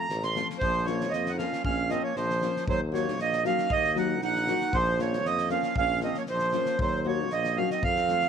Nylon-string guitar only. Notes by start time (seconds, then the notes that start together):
0.35 F3 A3 C4 F4
0.86 F3 A#3 C#4 F4
1.38 F3 A#3 C#4 F4
1.90 F3 A#3 C#4 F4
2.42 F3 A#3 C#4 F4
2.92 F#3 A#3 D#4 F#4
3.44 F#3 A#3 D#4 F#4
3.95 F#3 A#3 D#4 F#4
4.47 F#3 A#3 D#4 F#4
4.99 F3 A#3 C#4 F4
5.49 F3 A#3 C#4 F4
6.01 F3 A#3 C#4 F4
6.53 F3 A#3 C#4 F4
7.05 F#3 A#3 D#4 F#4
7.57 F#3 A#3 D#4 F#4
8.09 F3 A3 C4 F4